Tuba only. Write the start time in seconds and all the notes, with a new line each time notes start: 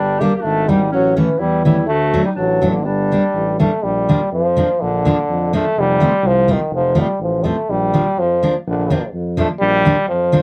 Already playing: G1
0.44 G#1
0.93 A1
1.41 E2
1.89 D2
2.37 A1
2.85 G1
3.34 A1
3.83 A#1
4.33 F2
4.82 A#1
5.29 F2
5.76 F1
6.23 C2
6.70 F1
7.20 A1
7.70 A#1
8.17 F2
8.67 A#1
9.14 F2
9.61 A#1
10.08 F2